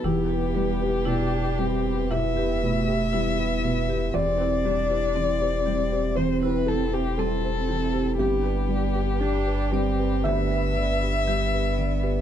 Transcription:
<<
  \new Staff \with { instrumentName = "Violin" } { \time 4/4 \key e \minor \tempo 4 = 59 g'2 e''2 | d''2 c''16 b'16 a'16 g'16 a'4 | g'2 e''2 | }
  \new Staff \with { instrumentName = "Analog synth pad" } { \time 4/4 \key e \minor <e' g' b'>1 | <c' e' g'>1 | <d' g' b'>1 | }
  \new Staff \with { instrumentName = "Felt piano" } { \time 4/4 \key e \minor << { g'2 e''2 | d''2 c''16 b'16 a'16 g'16 a'4 | g'2 e''2 | } \\ { e,16 <g' b'>16 g16 <g' b'>16 b,16 <g' b'>16 g16 <g' b'>16 b,16 <g' b'>16 b,16 <g' b'>16 g16 <g' b'>16 b,16 <g' b'>16 | e,16 <g' c''>16 g16 <g' c''>16 e16 <g' c''>16 g16 <g' c''>16 e,16 <g' c''>16 e16 c''16 g16 <g' c''>16 e16 <g' c''>16 | g,16 <g' b'>16 g16 <g' b'>16 d16 <g' b'>16 g16 <g' b'>16 d,16 <g' b'>16 d16 <g' b'>16 g16 <g' b'>16 d16 <g' b'>16 | } >> }
  \new Staff \with { instrumentName = "Marimba" } { \time 4/4 \key e \minor e'16 g'16 b'16 g'16 e'16 r16 b'16 r16 e'16 g'16 b'16 r16 e'16 r16 b'16 g'16 | c'16 e'16 g'16 e'16 c'16 r16 g'16 r16 c'16 e'16 g'16 r16 c'16 r16 g'16 e'16 | g'16 b'16 d''16 b'16 g'16 r16 d''16 r16 g'16 b'16 d''16 r16 g'16 r16 d''16 b'16 | }
  \new Staff \with { instrumentName = "Cello" } { \time 4/4 \key e \minor b4 d'8 c'8 b8 a8 b4 | c'8 d'8 c'4 c'2 | b4 d'8 c'8 b4 b4 | }
  \new Staff \with { instrumentName = "Sub bass" } { \clef bass \time 4/4 \key e \minor e,,1 | e,,1 | g,,1 | }
>>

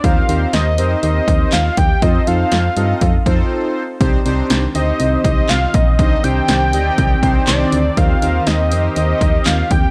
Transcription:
<<
  \new Staff \with { instrumentName = "Analog synth lead" } { \time 4/4 \key c \dorian \tempo 4 = 121 f''4 ees''4 ees''4 f''8 g''8 | ees''8 f''2 r4. | r4. ees''4 ees''8 f''8 ees''8 | ees''8 g''2~ g''8 d''4 |
f''4 ees''4 ees''4 f''8 g''8 | }
  \new Staff \with { instrumentName = "Analog polysynth" } { \time 4/4 \key c \dorian <c' ees' g' bes' c''>8 <c' ees' g' bes' c''>8. r16 <c' ees' g' bes' c''>4. r4 | <c' ees' f' a' c''>8 <c' ees' f' a' c''>8. r16 <c' ees' f' a' ees''>8. r16 <c' ees' f' a' c''>4 r8 | <c' d' ees' g' c''>8 <c' d' ees' g' c''>8. r16 <c' ees' g' c''>4. r4 | <c' d' ees' g' c''>8 <c' d' ees' g' c''>8. r16 <c' ees' g' d'' ees''>8. r16 <c' d' ees' g' c''>4 r8 |
<c' ees' g' bes' c''>8 <c' ees' g' bes' c''>8. r16 <c' ees' g' bes' c''>4. r4 | }
  \new Staff \with { instrumentName = "Analog synth pad" } { \time 4/4 \key c \dorian << { r1 | r1 | r1 | r1 |
g'1 | } \\ { r1 | r1 | <ees c'>1~ | <ees c'>1~ |
<ees c'>1 | } >> }
  \new Staff \with { instrumentName = "FM bass" } { \clef bass \time 4/4 \key c \dorian ees,8 ees,8 ees,8 f,8 ees,8 ees,8 ees,8 ees,8 | f,8 f,8 f,8 g,8 f,8 f,8 r4 | c,8 c,8 c,8 d,8 c,8 c,8 c,8 bes,,8 | c,8 c,8 c,8 d,8 c,8 c,8 c,8 d,8 |
ees,8 ees,8 ees,8 f,8 ees,8 ees,8 ees,8 ees,8 | }
  \new DrumStaff \with { instrumentName = "Drums" } \drummode { \time 4/4 <hh bd>8 hh8 <hh sn>8 hh8 hh8 <hh bd>8 <hc hh sn>8 <hh bd>8 | <hh bd>8 hh8 <hh sn>8 hh8 <hh bd>8 <hh bd>8 r4 | <hh bd>8 hh8 <hh sn>8 hh8 hh8 <hh bd>8 <hc hh sn>8 <hh bd>8 | <hh bd>8 hh8 <hh sn>8 hh8 <hh bd>8 <hh bd>8 <hc hh sn>8 hh8 |
<hh bd>8 hh8 <hh sn>8 hh8 hh8 <hh bd>8 <hc hh sn>8 <hh bd>8 | }
>>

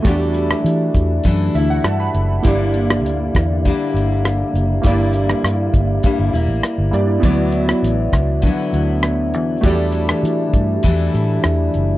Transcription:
<<
  \new Staff \with { instrumentName = "Synth keys" } { \time 4/4 \key g \lydian \tempo 4 = 100 << { r2 r8 e''16 fis''16 a''16 b''8. | r1 | r1 | r1 |
r1 | } \\ { <a fis' g' d''>1 | <bes e' g' d''>1 | <bes e' g' d''>2.~ <bes e' g' d''>8 <bes e' g' d''>8 | <b e' fis' d''>1 |
<a fis' g' d''>1 | } >> }
  \new Staff \with { instrumentName = "Steel-string acoustic guitar" } { \time 4/4 \key g \lydian <e g d' e' a'>2 <e d' e' a'>8 <d' e' a'>4. | <g, d g bes e'>2 <d g bes e'>2 | <g, d g bes e'>2 <g, d g bes e'>8 <g bes e'>4. | <fis b e'>2 <d fis b e'>2 |
<e g d' e' a'>2 <e g d' e' a'>2 | }
  \new Staff \with { instrumentName = "Fingered electric bass" } { \clef bass \time 4/4 \key g \lydian e,4 e8 e,8 fis,8 d,8 g,8 fis,,8 | g,,4 d,8 e,8. r16 g,,4 fis,,8 | g,,4 g,8 g,,8 r16 g,,16 e,,16 a,,16 r16 g,,16 g,8 | d,4 a,,8 cis,8. r16 d,4 e,8 |
e,4 e8 g,8 e,8 a,8 e,8 fis,,8 | }
  \new DrumStaff \with { instrumentName = "Drums" } \drummode { \time 4/4 <hh bd>8 hh16 ss16 hh8 <hh bd>8 <hh bd>8 hh8 <hh ss>8 hh8 | <hh bd>8 hh16 ss16 hh8 <hh bd ss>8 <hh bd>8 hh8 <hh ss>8 hh8 | <hh bd>8 hh16 ss16 <hh ss>8 <hh bd>8 <hh bd>8 hh8 <hh ss>8 hh8 | <hh bd>8 hh16 ss16 hh8 <hh bd ss>8 <hh bd>8 hh8 <hh ss>8 hh8 |
<hh bd>8 hh16 ss16 hh8 <hh bd>8 <hh bd>8 hh8 <hh ss>8 hh8 | }
>>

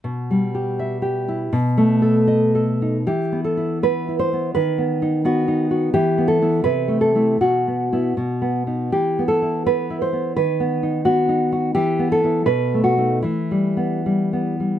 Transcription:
\new Staff \with { instrumentName = "Nylon-string guitar" } { \time 2/4 \key e \minor \tempo 4 = 81 << { r2 | r2 | g'8 a'8 b'8 c''8 | b'4 fis'4 |
g'8 a'8 b'8 a'8 | fis'4. r8 | g'8 a'8 b'8 c''8 | b'4 fis'4 |
g'8 a'8 b'8 fis'8 | e'4. r8 | } \\ { \tuplet 3/2 { b,8 g8 g'8 e''8 g'8 e'8 } | \tuplet 3/2 { b,8 a8 a'8 dis''8 a'8 dis'8 } | \tuplet 3/2 { e8 b8 e'8 b8 e'8 b8 } | \tuplet 3/2 { dis8 b8 dis'8 b8 dis'8 fis'8 } |
\tuplet 3/2 { e8 b8 <b e'>8 c8 a8 <a e'>8 } | \tuplet 3/2 { b,8 b8 <b e'>8 b,8 b8 <b dis'>8 } | \tuplet 3/2 { e8 b8 e'8 b8 e'8 b8 } | \tuplet 3/2 { dis8 b8 dis'8 b8 dis'8 fis'8 } |
\tuplet 3/2 { e8 b8 <b e'>8 b,8 a8 <a dis'>8 } | \tuplet 3/2 { e8 g8 b8 g8 b8 g8 } | } >> }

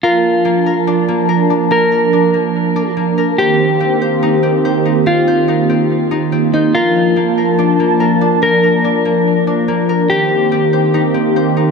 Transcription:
<<
  \new Staff \with { instrumentName = "Clean electric guitar" } { \time 4/4 \key bes \major \tempo 4 = 143 f'1 | bes'2. r4 | g'1 | f'2.~ f'8 ees'8 |
f'1 | bes'2. r4 | g'1 | }
  \new Staff \with { instrumentName = "Harp" } { \time 4/4 \key bes \major bes'4 bes8 bes'8 d'8 bes8 bes'8 d'8 | bes8 bes'8 d'8 bes4 d'8 bes8 bes'8 | c''4 c'8 c''8 ees'8 c'8 c''8 ees'8 | c'8 c''8 ees'8 c'4 ees'8 c'8 c''8 |
bes'4 bes8 bes'8 d'8 bes8 bes'8 d'8 | bes8 bes'8 d'8 bes4 d'8 bes8 bes'8 | c''4 c'8 c''8 ees'8 c'8 c''8 ees'8 | }
  \new Staff \with { instrumentName = "Analog synth pad" } { \time 4/4 \key bes \major << { <f d' a''>1~ | <f d' a''>1 | <ees c' g'>1~ | <ees c' g'>1 |
<f d' a''>1~ | <f d' a''>1 | <ees c' g'>1 | } \\ { bes1~ | bes1~ | bes1~ | bes1~ |
bes1~ | bes1 | bes1 | } >> }
>>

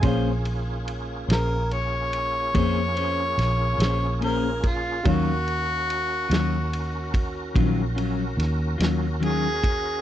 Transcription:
<<
  \new Staff \with { instrumentName = "Upright piano" } { \time 12/8 \key bes \minor \tempo 4. = 48 <aes' des'' f'' c'''>1. | <ges' bes' des'' f''>1. | }
  \new Staff \with { instrumentName = "Harmonica" } { \time 12/8 \key bes \minor r4. bes'8 des''2. bes'8 f'8 | ges'2. r2 aes'4 | }
  \new Staff \with { instrumentName = "Tonewheel organ" } { \time 12/8 \key bes \minor <bes des' f' aes'>1. | <des' ges' bes'>1. | }
  \new Staff \with { instrumentName = "Clean electric guitar" } { \time 12/8 \key bes \minor <bes des' aes' c''>8 r4 <des' aes' c''>8 r4 <bes des' aes' c''>8 <des' aes' c''>8 r8 <des' aes' c''>8 <bes des' aes' c''>8 r8 | <ees ges des' f'>8 r4 <ges des' f'>8 r4 <ees ges des' f'>8 <ges des' f'>8 r8 <ges des' f'>8 <ees ges des' f'>8 r8 | }
  \new Staff \with { instrumentName = "Fingered electric bass" } { \clef bass \time 12/8 \key bes \minor bes,,4. bes,,4. f,4 bes,,8 bes,,4. | ees,4. ees,4. bes,,4 ees,8 ees,4. | }
  \new DrumStaff \with { instrumentName = "Drums" } \drummode { \time 12/8 <bd cymr>8 cymr8 cymr8 <cymr sn>8 cymr8 cymr8 <bd cymr>8 cymr8 <cymr sn>8 <cymr sn>8 cymr8 <bd cymr>8 | <bd cymr>8 cymr8 cymr8 <cymr sn>8 cymr8 <bd cymr>8 <bd cymr>8 cymr8 <cymr sn>8 <cymr sn>8 cymr8 <bd cymr>8 | }
>>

